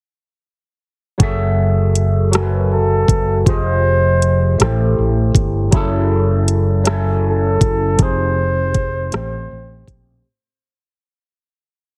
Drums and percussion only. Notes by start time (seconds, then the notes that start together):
1.20 kick, closed hi-hat
1.95 closed hi-hat
2.33 cross-stick, closed hi-hat
3.08 kick, closed hi-hat
3.46 kick, closed hi-hat
4.22 closed hi-hat
4.60 cross-stick, closed hi-hat
5.35 kick, closed hi-hat
5.72 kick, closed hi-hat
6.48 closed hi-hat
6.85 cross-stick, closed hi-hat
7.61 kick, closed hi-hat
7.99 kick, closed hi-hat
8.74 kick, closed hi-hat
9.12 cross-stick, closed hi-hat
9.88 kick, closed hi-hat